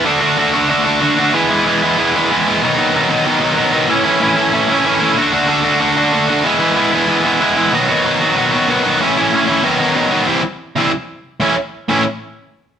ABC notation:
X:1
M:4/4
L:1/8
Q:1/4=187
K:E
V:1 name="Distorted electric guitar"
[=D,A,=DF] [D,A,DF] [D,A,DF] [D,A,DF] [D,A,DF] [D,A,DF] [D,A,DF] [D,A,DF] | [E,G,B,E] [E,G,B,E] [E,G,B,E] [E,G,B,E] [E,G,B,E] [E,G,B,E] [E,G,B,E] [E,G,B,E] | [B,,D,F,B,D] [B,,D,F,B,D] [B,,D,F,B,D] [B,,D,F,B,D] [B,,D,F,B,D] [B,,D,F,B,D] [B,,D,F,B,D] [B,,D,F,B,D] | [A,,E,A,CE] [A,,E,A,CE] [A,,E,A,CE] [A,,E,A,CE] [A,,E,A,CE] [A,,E,A,CE] [A,,E,A,CE] [A,,E,A,CE] |
[=D,A,=DF] [D,A,DF] [D,A,DF] [D,A,DF] [D,A,DF] [D,A,DF] [D,A,DF] [D,A,DF] | [E,G,B,E] [E,G,B,E] [E,G,B,E] [E,G,B,E] [E,G,B,E] [E,G,B,E] [E,G,B,E] [E,G,B,E] | [B,,D,F,B,F] [B,,D,F,B,F] [B,,D,F,B,F] [B,,D,F,B,F] [B,,D,F,B,F] [B,,D,F,B,F] [B,,D,F,B,F] [B,,D,F,B,F] | [A,,E,A,CE] [A,,E,A,CE] [A,,E,A,CE] [A,,E,A,CE] [B,,D,F,B,D] [B,,D,F,B,D] [B,,D,F,B,D] [B,,D,F,B,D] |
[=C,E,=G,=CE] z2 [C,E,G,CE] z3 [A,,E,A,^CE] | z2 [A,,E,A,CE] z4 z |]